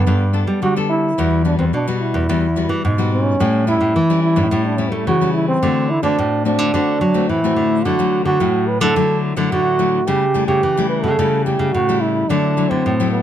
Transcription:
Already playing: B3
0.06 G2 G3 B3 D4 A4
0.33 B3 D4 A4
0.47 G3
0.62 D3 G3 F#4
0.76 B3 D4 A4
0.89 E4
1.18 E2 E3 G3 B3 F#4
1.45 G3 B3 D4 F#4
1.59 E2 C4
1.73 B2 D4
1.88 G3 B3 F#4
2.01 E4
2.14 E2
2.29 E2 E3 G3 B3 F#4
2.56 G3 B3 F#4
2.69 E3
2.85 G#2 B2
2.98 G3 B3 F#4
3.13 C#4
3.40 A2 G3 C#4 E4
3.67 G3 C#4 E4
3.81 A2
3.96 E3
4.10 G3 C#4 E4
4.23 E4
4.36 A2 G3 C#4 E4
4.51 A2 G3 C#4 E4
4.66 D4
4.78 G3 C#4 E4
4.92 A3
5.07 C#3 E3 F#4
5.21 G3 C#4 E4
5.34 E4
5.48 C4
5.62 D3 A3 C4 F#4
5.90 E4
6.03 D3 A3 C4 D4 F#4
6.18 A2
6.45 A3 C4 D4 F#4
6.58 D3
6.74 D3 A3 C4 F#4
7.01 F#3
7.14 A3 C4 F#4
7.29 A2 E3 E4
7.44 A3 C4 F#4
7.56 D3
7.85 D3 F#3 A3 E4 F#4
7.99 F#3 A3 E4
8.25 D3 F#4
8.40 A2 F#3 A3 E4
8.68 B4
8.81 D3 F#3 A3 E4 A4
8.96 D3 F#3 A3 E4
9.36 D3 F#3 A3 E4
9.52 A2 D3 F#4
9.79 F#3 A3 E4
10.07 C#3 G3 A3 E4 G4
10.34 G3 A3 E4
10.47 C#3 G4
10.63 C#3 E3
10.77 G3 A3 E4
10.89 B4
11.03 C#3 A4
11.19 C#3 G3 A3 E4
11.44 G3 A3 E4 G4
11.59 C#3
11.73 A2 C#3 F#4
11.89 G3 A3 E4
12.01 E4
12.29 D3 F#3 A3 D4 E4
12.57 F#3 A3 E4
12.69 D3 C4
12.86 A2
13.00 F#3 A3 E4
13.12 B3

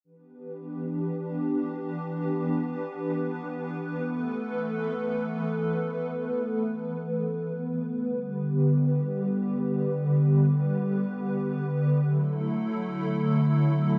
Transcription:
0.04 E3 B3 D4 G4 B4
4.04 E3 A3 A4
8.04 D3 G3 G4
12.04 D3 F#3 A3 E4 A4

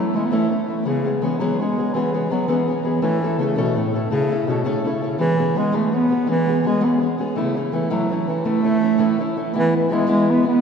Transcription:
Already playing: E3 A3
0.00 F#3 C#4 E4
0.14 E3 G#3 A3 C#4 E4
0.26 B3
0.31 A2 E3 A3 C#4 E4
0.49 E3 A3 C#4 E4
0.68 E3 A3 C#4 E4
0.85 C#3 E3 G#3 B3 C#4 G#4
1.04 G#3 B3 C#4 G#4
1.22 E3 G#3 B3 C#4 G#4
1.39 E3 F#3 G#3 B3 C#4 G#4
1.59 G#3 B3 C#4 G#4
1.76 G#3 B3 C#4 G#4
1.94 E3 G#3 B3 C#4 G#4
2.13 G#3 B3 C#4 G#4
2.30 F#3 G#3 B3 C#4 G#4
2.47 E3 G#3 B3 C#4 G#4
2.68 G#3 B3 C#4 G#4
2.83 G#3 B3 C#4 G#4
3.02 A2 E3 A3 C#4 E4 A4
3.21 A3 C#4 E4 A4
3.39 C#3 A3 C#4 E4 A4
3.56 A2 B2 A3 C#4 E4 A4
3.75 A2 A3 C#4 E4 A4
3.93 A3 C#4 E4 A4
4.10 A2 C#3 A3 C#4 E4 A4
4.29 A3 C#4 E4 A4
4.47 B2 A3 C#4 E4 A4
4.64 A2 C#3 A3 C#4 E4 A4
4.84 A3 C#4 E4 A4
5.01 A3 C#4 E4 A4
5.18 E3 G#3 B3 C#4 G#4
5.37 G#3 B3 C#4 G#4
5.55 G#3 B3 C#4 G#4
5.72 E3 G#3 A3 B3 C#4 G#4
5.92 G#3 B3 C#4 G#4
6.09 G#3 B3 C#4 G#4
6.26 E3 G#3 B3 C#4 G#4
6.46 G#3 B3 C#4 G#4
6.63 G#3 B3 C#4 G#4
6.80 E3 G#3 B3 C#4 G#4
6.99 G#3 B3 C#4 G#4
7.18 G#3 B3 C#4 G#4
7.35 A2 C#3 E3 A3 C#4 E4
7.55 E3 A3 C#4 E4
7.72 E3 A3 C#4 E4
7.90 A2 E3 F#3 A3 C#4 E4
8.10 E3 A3 C#4 E4
8.27 E3 A3 C#4 E4
8.44 A2 E3 A3 C#4 E4
8.62 E3 A3 C#4 E4
8.81 E3 A3 C#4 E4
8.98 A2 E3 A3 C#4 E4
9.18 E3 A3 C#4 E4
9.36 E3 A3 C#4 E4
9.54 E3 G#3 B3 E4
9.76 E3
9.89 E3 G#3 B3 E4
9.94 G#3
10.07 E3 G#3 B3 E4
10.11 G#3
10.30 B3
10.43 E3 G#3 B3 E4
10.48 B3

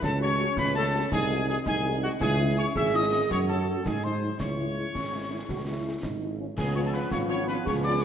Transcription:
0.02 C#2 C#4 A4 A5, concert bass drum, snare
0.21 A3 C#4 F#4 C#5 C#6
0.39 A3 C#4 F#4
0.57 C#2 B4 B5, concert bass drum, snare
0.74 A3 C#4 F#4 A4 A5
0.94 A3 C#4 F#4
1.12 C2 D#4 G#4 G#5, concert bass drum, snare
1.31 G#3 D#4 F#4
1.48 G#3 D#4 F#4 G#4 G#5
1.66 C2 D#4 G#4 G#5, concert bass drum, snare
1.85 G#3 D#4 F#4
2.02 G#3 D#4 F#4 F#5
2.20 C#2 E4 G#4 G#5, concert bass drum, snare, crash
2.38 G#3 C#4 E4
2.56 G#3 C#4 E4 C#5 C#6
2.76 G#1 G#4 E5 E6, concert bass drum, snare
2.94 G#3 C#4 E4 D#5 D#6
3.13 G#3 C#4 E4
3.31 F#2 F#4 C#5 C#6, concert bass drum, snare
3.48 F#3 C#4 F#4 A4 A5
3.69 F#3 C#4 F#4
3.85 G#2 D#4 G#4 G#5, concert bass drum, snare
4.03 F#3 G#3 D#4 C5 C6
4.22 F#3 G#3 D#4
4.38 C#2 E4 C#5 C#6, concert bass drum, snare
4.58 G#3 E4
4.77 G#3 E4
4.93 G#1 C#4, concert bass drum, snare
5.12 G#3 E4
5.29 G#3 E4
5.49 C#2 F#4, concert bass drum, snare
5.65 G#3 E4
5.84 G#3 E4
6.03 G#1 D#4, concert bass drum, snare
6.20 G#3 E4
6.39 G#3 C#4 E4
6.56 C#2 F3 B3 C#4 G#4 G#5, concert bass drum, snare, crash
6.74 B3 C#4 F4 C#5 C#6
6.85 A4 A5
6.93 B3 C#4 F4 B4 B5, snare
7.11 G#1 F4 C#5 C#6, concert bass drum, snare
7.29 B3 C#4 F4 C#5 C#6, snare
7.47 B3 C#4 F4 B4 B5, snare
7.65 C#2 G#4 C#5 C#6, concert bass drum, snare
7.83 B3 C#4 F4 D5 D6
8.01 C#6

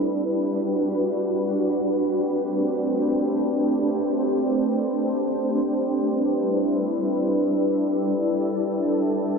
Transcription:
Already playing: G3 D4 B4
0.05 F#4
1.93 A3 C4 G4
3.80 C5
5.68 G3 E4 B4
7.55 A4

